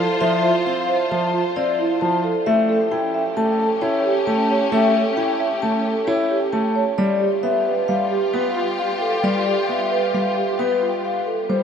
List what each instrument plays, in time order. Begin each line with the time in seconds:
Already playing: string section F4 C5
0.00 marimba A4
0.21 grand piano F3, vibraphone E5
0.44 marimba F4
0.66 grand piano C4, vibraphone F5
0.89 marimba C5
1.12 grand piano F3, vibraphone A5
1.34 marimba F4
1.56 grand piano C4, vibraphone D5
1.79 marimba E4
2.01 grand piano F3, vibraphone A5
2.24 marimba A4
2.46 grand piano A3, string section C#4 G4, vibraphone E5
2.69 marimba A4
2.92 grand piano E4, vibraphone G5
3.14 marimba E5
3.37 grand piano A3, vibraphone A5
3.59 marimba A4
3.81 grand piano E4, vibraphone C#5
4.04 marimba G4
4.27 grand piano A3, vibraphone A5
4.50 marimba C#5
4.72 grand piano A3, vibraphone E5
4.95 marimba A4
5.17 grand piano E4, vibraphone G5
5.40 marimba E5
5.62 grand piano A3, vibraphone A5
5.85 marimba A4
6.07 grand piano E4, vibraphone C#5
6.30 marimba G4
6.53 grand piano A3, vibraphone A5
6.75 marimba C#5
6.98 grand piano G3, string section F4 G4, vibraphone D5
7.20 marimba G4
7.43 grand piano B3, vibraphone E5
7.66 marimba B4
7.88 grand piano G3, vibraphone F5
8.11 marimba G4
8.34 grand piano B3, vibraphone B4
8.56 marimba F4
8.79 vibraphone F5
9.01 marimba A4
9.23 grand piano G3, vibraphone D5
9.46 marimba G4
9.69 grand piano B3, vibraphone E5
9.91 marimba B4
10.14 grand piano G3, vibraphone F5
10.36 marimba G4
10.59 grand piano B3, vibraphone B4
10.81 marimba F4
11.05 vibraphone F5
11.26 marimba A4
11.49 grand piano G3, string section E4 A#4, vibraphone C5